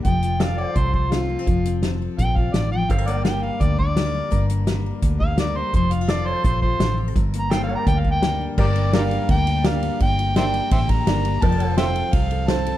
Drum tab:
CC |--------|--------|--------|--------|
RD |--------|--------|--------|--------|
HH |xxx-x-x-|xxx-x-x-|xxx-x-x-|xxx-x-x-|
SD |--o---o-|--o---o-|--o---o-|--o---o-|
BD |o---oo--|o---oo--|o---oo--|o---oo--|

CC |--------|--------|x-------|--------|
RD |--------|--------|-xxxxxxx|xxxxxxxx|
HH |xxx-x-x-|xxx-x-x-|--------|--------|
SD |--o---o-|--o---o-|--o---o-|--o---o-|
BD |o---oo--|o---oo--|o---o---|o---oo--|

CC |--------|
RD |xxxxxxxx|
HH |--------|
SD |--o---o-|
BD |o---o---|